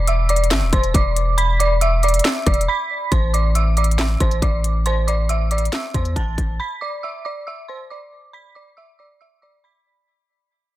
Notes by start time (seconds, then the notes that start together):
Already playing: E1
0.07 E5 E6, closed hi-hat
0.29 D5 D6, closed hi-hat, open hi-hat
0.36 closed hi-hat
0.44 closed hi-hat
0.51 G1 E5 E6, snare, clap, closed hi-hat
0.62 E1
0.73 E1 C5 C6, kick, closed hi-hat
0.83 closed hi-hat
0.94 E1 D5 D6, kick, closed hi-hat
1.16 closed hi-hat
1.38 B5 B6, closed hi-hat
1.60 D5 D6, closed hi-hat
1.81 E5 E6, closed hi-hat
2.03 D5 D6, closed hi-hat
2.08 closed hi-hat
2.14 closed hi-hat
2.19 closed hi-hat
2.25 E5 E6, snare, clap, closed hi-hat
2.46 E1 D5 D6, kick, cross-stick, closed hi-hat
2.54 closed hi-hat
2.61 closed hi-hat
2.68 B5 B6
3.12 A1 C5 C6, kick, closed hi-hat
3.34 D5 D6, closed hi-hat
3.55 E5 E6, closed hi-hat
3.77 D5 D6, closed hi-hat, open hi-hat
3.84 closed hi-hat
3.91 closed hi-hat
3.99 E5 E6, snare, clap, closed hi-hat
4.20 A1 C5 C6, kick, closed hi-hat
4.31 closed hi-hat
4.42 A1 D5 D6, kick, closed hi-hat
4.64 closed hi-hat
4.86 C5 C6, closed hi-hat
5.07 D5 D6, closed hi-hat
5.29 E5 E6, closed hi-hat
5.51 D5 D6, closed hi-hat
5.58 closed hi-hat
5.65 closed hi-hat
5.73 E5 E6, snare, clap, closed hi-hat
5.94 E2 C5 C6, kick, closed hi-hat
6.05 closed hi-hat
6.16 A1 A5 A6, kick, closed hi-hat
6.38 A1, kick, closed hi-hat
6.60 B5 B6
6.81 D5 D6
7.03 E5 E6
7.25 D5 D6
7.47 E5 E6
7.68 C5 C6
7.90 D5 D6
8.33 B5 B6
8.55 D5 D6
8.77 E5 E6
8.99 D5 D6
9.21 E5 E6
9.42 D5 D6
9.64 B5 B6